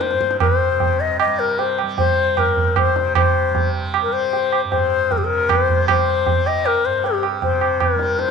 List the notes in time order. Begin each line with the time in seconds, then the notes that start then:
Already playing: G2 C3 G3
0.01 C5, tabla te
0.11 G2, tabla te
0.21 tabla ke
0.31 tabla te
0.40 C5, tabla na, tabla ge
0.70 C3
0.80 tabla tin, tabla ge
1.00 D#5
1.20 D#5, tabla na
1.27 G3
1.39 A#4
1.59 C5, tabla tin
1.78 tabla na
1.83 G3
1.98 C5, tabla tin, tabla ge
2.37 G2 A#4, tabla na, tabla ge
2.57 tabla ge
2.76 C5, tabla na, tabla ge
2.95 C3, tabla te
3.15 C5, tabla na, tabla ge
3.51 G3
3.55 tabla tin, tabla ge
3.94 tabla na
4.03 A#4
4.07 G3
4.13 C5
4.33 tabla tin
4.52 tabla na
4.64 G2
4.71 C5, tabla tin, tabla ge
5.11 A#4, tabla tin, tabla ge
5.18 C3 G4
5.24 A#4
5.49 C5, tabla na, tabla ge
5.69 tabla ge
5.75 G3
5.88 C5, tabla na, tabla ge
6.26 G3, tabla tin, tabla ge
6.46 D#5, tabla na
6.66 A#4, tabla na
6.85 G2 C5
7.04 G4, tabla tin
7.23 tabla na
7.40 C3 C5, tabla tin, tabla ge
7.61 tabla na
7.80 A#4, tabla na, tabla ge
7.95 G3, tabla te
8.19 C5, tabla te